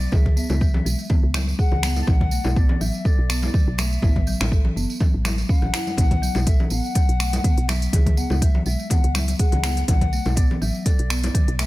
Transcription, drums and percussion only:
0.01 tambourine medium
0.12 kick loud
0.12 tambourine soft
0.12 high conga loud
0.12 low conga loud
0.26 kick medium
0.26 mid tom medium
0.26 muted conga soft
0.37 tambourine medium
0.50 tambourine medium
0.50 high conga loud
0.61 kick loud
0.61 tambourine soft
0.61 muted conga soft
0.74 low conga loud
0.86 tambourine loud
0.99 tambourine medium
1.10 kick loud
1.10 muted conga soft
1.10 high conga medium
1.10 low conga medium
1.34 finger snap medium
1.34 tambourine medium
1.34 high conga medium
1.47 tambourine medium
1.47 muted conga soft
1.59 kick loud
1.59 tambourine soft
1.72 low conga medium
1.83 finger snap medium
1.83 tambourine medium
1.83 muted conga soft
1.83 high conga medium
1.96 tambourine soft
1.96 high conga medium
2.07 kick loud
2.07 tambourine soft
2.07 high conga loud
2.07 low conga loud
2.21 kick medium
2.21 mid tom medium
2.21 muted conga soft
2.31 tambourine medium
2.44 tambourine medium
2.44 high conga loud
2.56 kick loud
2.56 tambourine soft
2.56 muted conga soft
2.69 low conga loud
2.81 tambourine loud
2.94 tambourine medium
3.05 kick loud
3.05 tambourine soft
3.05 muted conga soft
3.30 finger snap medium
3.30 tambourine medium
3.42 tambourine medium
3.42 muted conga soft
3.42 high conga loud
3.54 kick loud
3.54 mid tom medium
3.54 tambourine soft
3.78 finger snap medium
3.78 tambourine loud
3.78 muted conga soft
3.78 high conga medium
3.93 tambourine medium
4.02 kick loud
4.02 tambourine soft
4.02 high conga loud
4.02 low conga medium
4.16 kick medium
4.16 mid tom medium
4.16 muted conga soft
4.27 tambourine medium
4.40 finger snap medium
4.40 tambourine medium
4.40 high conga loud
4.52 kick loud
4.52 tambourine soft
4.52 muted conga soft
4.65 low conga medium
4.77 tambourine medium
4.90 tambourine medium
5.00 kick loud
5.00 tambourine soft
5.00 muted conga soft
5.00 high conga medium
5.00 low conga loud
5.25 finger snap medium
5.25 tambourine medium
5.25 high conga loud
5.38 tambourine soft
5.38 muted conga soft
5.49 kick loud
5.49 tambourine soft
5.62 low conga medium
5.74 finger snap medium
5.74 tambourine loud
5.74 muted conga soft
5.74 high conga medium
5.87 tambourine medium
5.87 high conga medium
5.97 kick loud
5.97 closed hi-hat medium
5.97 tambourine soft
5.97 high conga loud
5.97 low conga medium
6.11 kick medium
6.11 closed hi-hat soft
6.11 mid tom medium
6.11 muted conga soft
6.23 tambourine medium
6.35 tambourine soft
6.35 high conga loud
6.46 kick loud
6.46 closed hi-hat medium
6.46 tambourine soft
6.46 muted conga soft
6.60 low conga medium
6.70 tambourine medium
6.84 tambourine medium
6.95 kick loud
6.95 closed hi-hat medium
6.95 tambourine soft
6.95 muted conga medium
7.09 closed hi-hat soft
7.20 finger snap medium
7.20 tambourine medium
7.33 closed hi-hat soft
7.33 tambourine medium
7.33 muted conga soft
7.33 high conga loud
7.44 kick loud
7.44 closed hi-hat medium
7.44 mid tom medium
7.44 tambourine soft
7.58 closed hi-hat soft
7.68 finger snap medium
7.68 tambourine medium
7.68 muted conga soft
7.68 high conga medium
7.82 closed hi-hat soft
7.82 tambourine medium
7.93 kick loud
7.93 closed hi-hat medium
7.93 tambourine soft
7.93 high conga medium
7.93 low conga loud
8.06 kick medium
8.06 closed hi-hat soft
8.06 mid tom medium
8.06 muted conga soft
8.17 tambourine medium
8.30 tambourine medium
8.30 high conga loud
8.42 kick loud
8.42 closed hi-hat medium
8.42 tambourine soft
8.42 muted conga soft
8.55 low conga medium
8.66 tambourine medium
8.80 tambourine soft
8.90 kick loud
8.90 closed hi-hat medium
8.90 tambourine soft
8.90 muted conga medium
8.90 high conga medium
8.90 low conga loud
9.04 closed hi-hat soft
9.15 finger snap medium
9.15 tambourine medium
9.15 high conga medium
9.28 closed hi-hat soft
9.28 tambourine medium
9.28 muted conga soft
9.39 kick loud
9.39 closed hi-hat medium
9.39 tambourine soft
9.52 closed hi-hat soft
9.52 low conga medium
9.64 finger snap medium
9.64 tambourine loud
9.64 muted conga soft
9.64 high conga medium
9.77 closed hi-hat soft
9.77 tambourine soft
9.77 high conga medium
9.88 kick loud
9.88 closed hi-hat medium
9.88 tambourine soft
9.88 high conga loud
9.88 low conga loud
10.01 kick medium
10.01 closed hi-hat soft
10.01 mid tom medium
10.01 muted conga medium
10.13 tambourine medium
10.25 tambourine soft
10.25 high conga medium
10.36 kick loud
10.36 closed hi-hat medium
10.36 tambourine soft
10.36 muted conga soft
10.51 low conga medium
10.62 tambourine medium
10.75 tambourine soft
10.86 kick loud
10.86 closed hi-hat medium
10.86 tambourine soft
10.86 muted conga medium
10.99 closed hi-hat soft
11.10 finger snap medium
11.10 tambourine medium
11.23 closed hi-hat soft
11.23 tambourine soft
11.23 muted conga soft
11.23 high conga loud
11.35 kick loud
11.35 closed hi-hat medium
11.35 mid tom medium
11.35 tambourine soft
11.48 closed hi-hat soft
11.59 finger snap medium
11.59 tambourine medium
11.59 muted conga soft
11.59 high conga medium

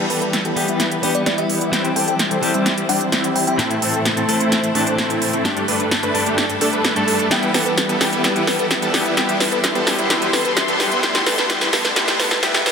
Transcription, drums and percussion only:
0.10 open hi-hat loud
0.22 closed hi-hat soft
0.33 snare soft
0.33 closed hi-hat medium
0.45 closed hi-hat soft
0.57 open hi-hat medium
0.68 closed hi-hat soft
0.80 snare soft
0.80 closed hi-hat medium
0.91 closed hi-hat soft
1.03 open hi-hat loud
1.15 closed hi-hat soft
1.26 snare soft
1.26 closed hi-hat medium
1.38 closed hi-hat soft
1.50 open hi-hat medium
1.61 closed hi-hat soft
1.73 snare medium
1.73 closed hi-hat medium
1.85 closed hi-hat soft
1.96 open hi-hat loud
2.08 closed hi-hat soft
2.19 snare medium
2.19 closed hi-hat medium
2.31 closed hi-hat soft
2.43 open hi-hat medium
2.54 closed hi-hat soft
2.66 snare soft
2.66 closed hi-hat medium
2.78 closed hi-hat soft
2.89 open hi-hat loud
3.01 closed hi-hat soft
3.12 snare medium
3.12 closed hi-hat medium
3.24 closed hi-hat soft
3.36 open hi-hat medium
3.47 closed hi-hat soft
3.59 snare medium
3.59 closed hi-hat medium
3.71 closed hi-hat soft
3.82 open hi-hat loud
3.94 closed hi-hat soft
4.05 snare medium
4.05 closed hi-hat medium
4.17 closed hi-hat soft
4.29 open hi-hat loud
4.40 closed hi-hat soft
4.52 snare medium
4.52 closed hi-hat medium
4.64 closed hi-hat soft
4.75 open hi-hat loud
4.87 closed hi-hat soft
4.98 snare medium
4.98 closed hi-hat medium
5.10 closed hi-hat soft
5.22 open hi-hat medium
5.33 closed hi-hat soft
5.45 snare medium
5.45 closed hi-hat medium
5.57 closed hi-hat soft
5.68 open hi-hat loud
5.80 closed hi-hat soft
5.91 snare medium
5.91 closed hi-hat medium
6.03 closed hi-hat soft
6.15 open hi-hat medium
6.26 closed hi-hat soft
6.38 snare medium
6.38 closed hi-hat medium
6.50 closed hi-hat soft
6.61 open hi-hat loud
6.73 closed hi-hat soft
6.84 snare medium
6.84 closed hi-hat medium
6.96 closed hi-hat soft
7.08 open hi-hat medium
7.19 closed hi-hat soft
7.31 snare medium
7.31 closed hi-hat medium
7.43 closed hi-hat soft
7.54 snare medium
7.54 open hi-hat loud
7.66 closed hi-hat soft
7.78 snare medium
7.78 closed hi-hat medium
7.89 closed hi-hat soft
8.01 snare medium
8.01 open hi-hat loud
8.13 closed hi-hat soft
8.24 snare medium
8.24 closed hi-hat medium
8.36 closed hi-hat soft
8.47 snare medium
8.47 open hi-hat loud
8.59 closed hi-hat soft
8.71 snare medium
8.71 closed hi-hat medium
8.82 closed hi-hat soft
8.94 snare medium
8.94 open hi-hat medium
9.06 closed hi-hat soft
9.17 snare medium
9.17 closed hi-hat medium
9.29 closed hi-hat soft
9.40 snare medium
9.40 open hi-hat loud
9.52 closed hi-hat soft
9.64 snare medium
9.64 closed hi-hat medium
9.75 closed hi-hat soft
9.87 snare medium
9.87 open hi-hat medium
9.98 closed hi-hat soft
10.10 snare medium
10.10 closed hi-hat medium
10.22 closed hi-hat soft
10.33 snare medium
10.33 open hi-hat loud
10.45 closed hi-hat soft
10.57 snare medium
10.57 closed hi-hat medium
10.68 closed hi-hat soft
10.80 snare medium
10.80 open hi-hat medium
10.91 closed hi-hat soft
11.03 snare medium
11.03 closed hi-hat medium
11.15 snare medium
11.15 closed hi-hat soft
11.26 snare loud
11.26 open hi-hat loud
11.38 snare medium
11.38 closed hi-hat soft
11.50 snare loud
11.50 closed hi-hat medium
11.61 snare medium
11.61 closed hi-hat soft
11.73 snare loud
11.73 open hi-hat medium
11.85 snare medium
11.85 closed hi-hat soft
11.96 snare medium
11.96 closed hi-hat medium
12.08 snare medium
12.08 closed hi-hat soft
12.19 snare loud
12.19 open hi-hat loud
12.31 snare medium
12.31 closed hi-hat soft
12.43 snare loud
12.43 closed hi-hat medium
12.54 snare medium
12.54 closed hi-hat soft
12.66 snare loud
12.66 open hi-hat medium

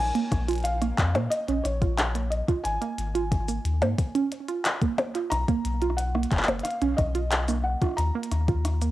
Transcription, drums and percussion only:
0.15 closed hi-hat soft
0.32 kick loud
0.32 cross-stick medium
0.32 closed hi-hat medium
0.49 closed hi-hat soft
0.51 closed hi-hat soft
0.53 closed hi-hat soft
0.56 closed hi-hat soft
0.58 closed hi-hat soft
0.60 closed hi-hat soft
0.63 closed hi-hat soft
0.65 closed hi-hat medium
0.82 cross-stick medium
0.82 closed hi-hat soft
0.98 kick loud
0.98 clap loud
0.98 closed hi-hat medium
1.15 cross-stick medium
1.15 closed hi-hat soft
1.15 percussion blips medium
1.32 closed hi-hat loud
1.48 closed hi-hat soft
1.65 cross-stick medium
1.65 closed hi-hat medium
1.82 kick loud
1.82 closed hi-hat soft
1.98 cross-stick medium
1.98 clap loud
1.98 closed hi-hat loud
2.15 closed hi-hat soft
2.32 closed hi-hat soft
2.48 kick loud
2.48 cross-stick medium
2.48 closed hi-hat soft
2.65 closed hi-hat loud
2.82 closed hi-hat soft
2.98 closed hi-hat medium
3.15 closed hi-hat soft
3.32 kick loud
3.32 cross-stick medium
3.32 closed hi-hat loud
3.48 closed hi-hat soft
3.48 cabasa medium
3.65 closed hi-hat medium
3.82 closed hi-hat soft
3.82 percussion blips medium
3.98 kick loud
3.98 closed hi-hat loud
4.15 closed hi-hat soft
4.32 closed hi-hat medium
4.48 closed hi-hat soft
4.65 clap loud
4.65 closed hi-hat loud
4.82 kick loud
4.82 closed hi-hat soft
4.98 cross-stick medium
4.98 closed hi-hat soft
4.98 percussion blips medium
5.15 closed hi-hat soft
5.32 cross-stick medium
5.32 closed hi-hat loud
5.48 kick loud
5.48 closed hi-hat soft
5.65 closed hi-hat medium
5.82 closed hi-hat soft
5.90 cross-stick soft
5.98 closed hi-hat medium
6.15 cross-stick medium
6.23 closed hi-hat soft
6.32 kick loud
6.32 clap medium
6.32 closed hi-hat medium
6.37 clap medium
6.43 clap loud
6.48 closed hi-hat soft
6.48 percussion blips medium
6.59 closed hi-hat soft
6.65 cross-stick medium
6.65 closed hi-hat loud
6.71 closed hi-hat soft
6.82 closed hi-hat soft
6.98 kick loud
6.98 cross-stick medium
6.98 closed hi-hat medium
7.15 closed hi-hat soft
7.32 clap loud
7.32 closed hi-hat medium
7.48 cross-stick soft
7.48 closed hi-hat soft
7.48 cabasa medium
7.51 cross-stick soft
7.53 cross-stick soft
7.55 cross-stick soft
7.58 cross-stick soft
7.60 cross-stick soft
7.63 cross-stick soft
7.82 kick loud
7.82 cross-stick medium
7.82 closed hi-hat soft
7.84 cross-stick medium
7.86 cross-stick soft
7.89 cross-stick soft
7.91 cross-stick soft
7.94 cross-stick soft
7.96 cross-stick soft
7.96 closed hi-hat medium
8.23 closed hi-hat soft
8.32 cross-stick soft
8.32 closed hi-hat medium
8.48 kick loud
8.48 closed hi-hat soft
8.65 cross-stick medium
8.65 closed hi-hat medium
8.82 closed hi-hat soft
8.82 cabasa medium

